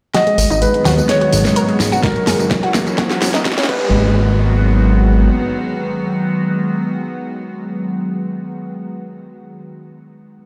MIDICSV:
0, 0, Header, 1, 7, 480
1, 0, Start_track
1, 0, Key_signature, 5, "minor"
1, 0, Tempo, 472441
1, 148, Time_signature, 4, 2, 24, 8
1, 10625, End_track
2, 0, Start_track
2, 0, Title_t, "Grand piano"
2, 0, Program_c, 0, 0
2, 146, Note_on_c, 0, 75, 95
2, 581, Note_off_c, 0, 75, 0
2, 627, Note_on_c, 0, 71, 87
2, 1062, Note_off_c, 0, 71, 0
2, 1108, Note_on_c, 0, 73, 93
2, 1977, Note_off_c, 0, 73, 0
2, 2065, Note_on_c, 0, 70, 97
2, 3747, Note_off_c, 0, 70, 0
2, 3748, Note_on_c, 0, 71, 86
2, 8616, Note_off_c, 0, 71, 0
2, 10625, End_track
3, 0, Start_track
3, 0, Title_t, "Ambient pad"
3, 0, Program_c, 1, 92
3, 146, Note_on_c, 1, 54, 75
3, 146, Note_on_c, 1, 56, 75
3, 146, Note_on_c, 1, 59, 76
3, 146, Note_on_c, 1, 66, 83
3, 147, Note_on_c, 1, 51, 78
3, 2048, Note_off_c, 1, 51, 0
3, 2048, Note_off_c, 1, 56, 0
3, 2048, Note_off_c, 1, 59, 0
3, 2067, Note_on_c, 1, 58, 72
3, 2067, Note_on_c, 1, 61, 74
3, 2068, Note_on_c, 1, 52, 78
3, 3711, Note_off_c, 1, 54, 0
3, 3711, Note_off_c, 1, 66, 0
3, 3731, Note_off_c, 1, 52, 0
3, 3731, Note_off_c, 1, 58, 0
3, 3731, Note_off_c, 1, 61, 0
3, 3748, Note_on_c, 1, 51, 82
3, 3748, Note_on_c, 1, 56, 73
3, 3749, Note_on_c, 1, 54, 74
3, 3749, Note_on_c, 1, 59, 78
3, 3749, Note_on_c, 1, 66, 86
3, 8600, Note_off_c, 1, 51, 0
3, 8600, Note_off_c, 1, 56, 0
3, 8600, Note_off_c, 1, 59, 0
3, 8601, Note_off_c, 1, 54, 0
3, 8601, Note_off_c, 1, 66, 0
3, 10625, End_track
4, 0, Start_track
4, 0, Title_t, "Synth pluck"
4, 0, Program_c, 2, 84
4, 147, Note_on_c, 2, 66, 99
4, 245, Note_off_c, 2, 66, 0
4, 273, Note_on_c, 2, 56, 61
4, 362, Note_off_c, 2, 56, 0
4, 387, Note_on_c, 2, 56, 65
4, 485, Note_off_c, 2, 56, 0
4, 512, Note_on_c, 2, 63, 95
4, 602, Note_off_c, 2, 63, 0
4, 627, Note_on_c, 2, 56, 64
4, 725, Note_off_c, 2, 56, 0
4, 752, Note_on_c, 2, 56, 63
4, 842, Note_off_c, 2, 56, 0
4, 866, Note_on_c, 2, 66, 92
4, 965, Note_off_c, 2, 66, 0
4, 992, Note_on_c, 2, 56, 65
4, 1082, Note_off_c, 2, 56, 0
4, 1106, Note_on_c, 2, 56, 65
4, 1205, Note_off_c, 2, 56, 0
4, 1232, Note_on_c, 2, 66, 93
4, 1322, Note_off_c, 2, 66, 0
4, 1346, Note_on_c, 2, 56, 64
4, 1445, Note_off_c, 2, 56, 0
4, 1472, Note_on_c, 2, 56, 64
4, 1562, Note_off_c, 2, 56, 0
4, 1587, Note_on_c, 2, 70, 92
4, 1685, Note_off_c, 2, 70, 0
4, 1712, Note_on_c, 2, 56, 67
4, 1802, Note_off_c, 2, 56, 0
4, 1827, Note_on_c, 2, 56, 69
4, 1925, Note_off_c, 2, 56, 0
4, 1952, Note_on_c, 2, 66, 93
4, 2042, Note_off_c, 2, 66, 0
4, 2067, Note_on_c, 2, 54, 62
4, 2165, Note_off_c, 2, 54, 0
4, 2193, Note_on_c, 2, 54, 64
4, 2282, Note_off_c, 2, 54, 0
4, 2307, Note_on_c, 2, 68, 94
4, 2405, Note_off_c, 2, 68, 0
4, 2433, Note_on_c, 2, 54, 65
4, 2522, Note_off_c, 2, 54, 0
4, 2547, Note_on_c, 2, 54, 65
4, 2645, Note_off_c, 2, 54, 0
4, 2672, Note_on_c, 2, 66, 96
4, 2762, Note_off_c, 2, 66, 0
4, 2786, Note_on_c, 2, 54, 64
4, 2885, Note_off_c, 2, 54, 0
4, 2913, Note_on_c, 2, 54, 67
4, 3002, Note_off_c, 2, 54, 0
4, 3027, Note_on_c, 2, 66, 94
4, 3125, Note_off_c, 2, 66, 0
4, 3153, Note_on_c, 2, 54, 63
4, 3242, Note_off_c, 2, 54, 0
4, 3267, Note_on_c, 2, 54, 64
4, 3365, Note_off_c, 2, 54, 0
4, 3393, Note_on_c, 2, 63, 89
4, 3482, Note_off_c, 2, 63, 0
4, 3508, Note_on_c, 2, 54, 69
4, 3606, Note_off_c, 2, 54, 0
4, 3634, Note_on_c, 2, 61, 95
4, 3723, Note_off_c, 2, 61, 0
4, 3748, Note_on_c, 2, 59, 96
4, 8617, Note_off_c, 2, 59, 0
4, 10625, End_track
5, 0, Start_track
5, 0, Title_t, "Analog synth bass"
5, 0, Program_c, 3, 38
5, 388, Note_on_c, 3, 32, 96
5, 468, Note_off_c, 3, 32, 0
5, 513, Note_on_c, 3, 32, 97
5, 670, Note_off_c, 3, 32, 0
5, 867, Note_on_c, 3, 39, 101
5, 1028, Note_off_c, 3, 39, 0
5, 1348, Note_on_c, 3, 32, 98
5, 1508, Note_off_c, 3, 32, 0
5, 1828, Note_on_c, 3, 32, 97
5, 1988, Note_off_c, 3, 32, 0
5, 2308, Note_on_c, 3, 30, 97
5, 2388, Note_off_c, 3, 30, 0
5, 2433, Note_on_c, 3, 30, 97
5, 2590, Note_off_c, 3, 30, 0
5, 2787, Note_on_c, 3, 37, 101
5, 2948, Note_off_c, 3, 37, 0
5, 3268, Note_on_c, 3, 30, 107
5, 3428, Note_off_c, 3, 30, 0
5, 3749, Note_on_c, 3, 32, 98
5, 5388, Note_off_c, 3, 32, 0
5, 10625, End_track
6, 0, Start_track
6, 0, Title_t, "Riser"
6, 0, Program_c, 4, 103
6, 147, Note_on_c, 4, 60, 79
6, 3987, Note_off_c, 4, 60, 0
6, 10625, End_track
7, 0, Start_track
7, 0, Title_t, "Drums"
7, 147, Note_on_c, 9, 38, 49
7, 147, Note_on_c, 9, 42, 94
7, 154, Note_on_c, 9, 54, 35
7, 249, Note_off_c, 9, 38, 0
7, 249, Note_off_c, 9, 42, 0
7, 256, Note_off_c, 9, 54, 0
7, 273, Note_on_c, 9, 42, 41
7, 374, Note_off_c, 9, 42, 0
7, 387, Note_on_c, 9, 46, 110
7, 395, Note_on_c, 9, 54, 84
7, 489, Note_off_c, 9, 46, 0
7, 497, Note_off_c, 9, 54, 0
7, 513, Note_on_c, 9, 42, 40
7, 520, Note_on_c, 9, 54, 44
7, 614, Note_off_c, 9, 42, 0
7, 622, Note_off_c, 9, 54, 0
7, 628, Note_on_c, 9, 42, 92
7, 635, Note_on_c, 9, 54, 33
7, 729, Note_off_c, 9, 42, 0
7, 737, Note_off_c, 9, 54, 0
7, 754, Note_on_c, 9, 42, 43
7, 855, Note_off_c, 9, 42, 0
7, 867, Note_on_c, 9, 38, 55
7, 867, Note_on_c, 9, 46, 90
7, 875, Note_on_c, 9, 54, 76
7, 969, Note_off_c, 9, 38, 0
7, 969, Note_off_c, 9, 46, 0
7, 976, Note_off_c, 9, 54, 0
7, 993, Note_on_c, 9, 42, 38
7, 1001, Note_on_c, 9, 54, 44
7, 1095, Note_off_c, 9, 42, 0
7, 1102, Note_off_c, 9, 54, 0
7, 1107, Note_on_c, 9, 38, 57
7, 1107, Note_on_c, 9, 42, 94
7, 1114, Note_on_c, 9, 54, 33
7, 1209, Note_off_c, 9, 38, 0
7, 1209, Note_off_c, 9, 42, 0
7, 1216, Note_off_c, 9, 54, 0
7, 1233, Note_on_c, 9, 42, 43
7, 1335, Note_off_c, 9, 42, 0
7, 1347, Note_on_c, 9, 46, 107
7, 1354, Note_on_c, 9, 54, 80
7, 1448, Note_off_c, 9, 46, 0
7, 1456, Note_off_c, 9, 54, 0
7, 1472, Note_on_c, 9, 38, 56
7, 1472, Note_on_c, 9, 42, 41
7, 1480, Note_on_c, 9, 54, 45
7, 1574, Note_off_c, 9, 38, 0
7, 1574, Note_off_c, 9, 42, 0
7, 1582, Note_off_c, 9, 54, 0
7, 1587, Note_on_c, 9, 42, 93
7, 1594, Note_on_c, 9, 54, 34
7, 1688, Note_off_c, 9, 42, 0
7, 1696, Note_off_c, 9, 54, 0
7, 1713, Note_on_c, 9, 42, 41
7, 1814, Note_off_c, 9, 42, 0
7, 1828, Note_on_c, 9, 38, 69
7, 1828, Note_on_c, 9, 46, 93
7, 1835, Note_on_c, 9, 54, 76
7, 1929, Note_off_c, 9, 38, 0
7, 1929, Note_off_c, 9, 46, 0
7, 1937, Note_off_c, 9, 54, 0
7, 1953, Note_on_c, 9, 42, 39
7, 1961, Note_on_c, 9, 54, 47
7, 2055, Note_off_c, 9, 42, 0
7, 2062, Note_off_c, 9, 54, 0
7, 2067, Note_on_c, 9, 36, 125
7, 2067, Note_on_c, 9, 38, 72
7, 2067, Note_on_c, 9, 42, 95
7, 2075, Note_on_c, 9, 54, 33
7, 2169, Note_off_c, 9, 36, 0
7, 2169, Note_off_c, 9, 38, 0
7, 2169, Note_off_c, 9, 42, 0
7, 2176, Note_off_c, 9, 54, 0
7, 2193, Note_on_c, 9, 42, 41
7, 2295, Note_off_c, 9, 42, 0
7, 2307, Note_on_c, 9, 38, 81
7, 2307, Note_on_c, 9, 46, 116
7, 2315, Note_on_c, 9, 54, 83
7, 2409, Note_off_c, 9, 38, 0
7, 2409, Note_off_c, 9, 46, 0
7, 2416, Note_off_c, 9, 54, 0
7, 2433, Note_on_c, 9, 42, 39
7, 2441, Note_on_c, 9, 54, 45
7, 2535, Note_off_c, 9, 42, 0
7, 2542, Note_off_c, 9, 54, 0
7, 2547, Note_on_c, 9, 36, 117
7, 2547, Note_on_c, 9, 38, 85
7, 2547, Note_on_c, 9, 42, 94
7, 2555, Note_on_c, 9, 54, 33
7, 2649, Note_off_c, 9, 36, 0
7, 2649, Note_off_c, 9, 38, 0
7, 2649, Note_off_c, 9, 42, 0
7, 2656, Note_off_c, 9, 54, 0
7, 2672, Note_on_c, 9, 42, 41
7, 2774, Note_off_c, 9, 42, 0
7, 2786, Note_on_c, 9, 38, 85
7, 2786, Note_on_c, 9, 46, 93
7, 2787, Note_on_c, 9, 36, 59
7, 2794, Note_on_c, 9, 54, 76
7, 2888, Note_off_c, 9, 38, 0
7, 2888, Note_off_c, 9, 46, 0
7, 2889, Note_off_c, 9, 36, 0
7, 2895, Note_off_c, 9, 54, 0
7, 2913, Note_on_c, 9, 42, 39
7, 2920, Note_on_c, 9, 54, 42
7, 3015, Note_off_c, 9, 42, 0
7, 3022, Note_off_c, 9, 54, 0
7, 3027, Note_on_c, 9, 36, 127
7, 3027, Note_on_c, 9, 38, 88
7, 3027, Note_on_c, 9, 42, 93
7, 3035, Note_on_c, 9, 54, 31
7, 3129, Note_off_c, 9, 36, 0
7, 3129, Note_off_c, 9, 38, 0
7, 3129, Note_off_c, 9, 42, 0
7, 3136, Note_off_c, 9, 54, 0
7, 3154, Note_on_c, 9, 38, 83
7, 3154, Note_on_c, 9, 42, 42
7, 3255, Note_off_c, 9, 38, 0
7, 3255, Note_off_c, 9, 42, 0
7, 3268, Note_on_c, 9, 38, 97
7, 3268, Note_on_c, 9, 46, 113
7, 3275, Note_on_c, 9, 54, 76
7, 3369, Note_off_c, 9, 38, 0
7, 3369, Note_off_c, 9, 46, 0
7, 3377, Note_off_c, 9, 54, 0
7, 3394, Note_on_c, 9, 38, 87
7, 3402, Note_on_c, 9, 54, 42
7, 3496, Note_off_c, 9, 38, 0
7, 3503, Note_off_c, 9, 54, 0
7, 3508, Note_on_c, 9, 36, 127
7, 3509, Note_on_c, 9, 38, 97
7, 3509, Note_on_c, 9, 42, 97
7, 3516, Note_on_c, 9, 54, 30
7, 3571, Note_off_c, 9, 38, 0
7, 3571, Note_on_c, 9, 38, 87
7, 3609, Note_off_c, 9, 36, 0
7, 3610, Note_off_c, 9, 42, 0
7, 3618, Note_off_c, 9, 54, 0
7, 3634, Note_off_c, 9, 38, 0
7, 3634, Note_on_c, 9, 38, 90
7, 3634, Note_on_c, 9, 42, 40
7, 3692, Note_off_c, 9, 38, 0
7, 3692, Note_on_c, 9, 38, 95
7, 3736, Note_off_c, 9, 42, 0
7, 3748, Note_on_c, 9, 36, 117
7, 3748, Note_on_c, 9, 49, 90
7, 3793, Note_off_c, 9, 38, 0
7, 3849, Note_off_c, 9, 49, 0
7, 3850, Note_off_c, 9, 36, 0
7, 10625, End_track
0, 0, End_of_file